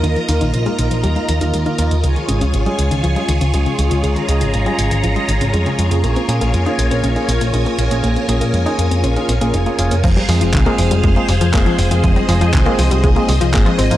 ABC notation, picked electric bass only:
X:1
M:4/4
L:1/16
Q:1/4=120
K:Fm
V:1 name="Picked electric bass" clef=bass
E,, z E,, B,,, B,,, z B,,, B,,, E,, z E,, E,, E,, z E,, E,, | D,, z A,,, D,, A,,, z D,, D,, D,, z D,, D,, D,, z D,, D,, | D,, z D,, A,,, A,,, z A,,, A,,, A,,, z A,,, A,,, F,, z F,, F,, | B,,, z B,, B,,, F,, z B,,, B,,, B,,, z B,,, B,,, B,,, z B,,, B,,, |
B,,, z B,,, B,, F,, z F,, F,, B,,, z B,,, B,,, F,,, z F,,, F,,, | F,,, z F,, F,,, C,, z F,,, F,,, F,,, z F,,, F,,, F,,, z F,,, F,,, | F,,, z F,,, F,, C,, z C,, C,, C,, z C,, C,, A,,, z A,,, A,,, |]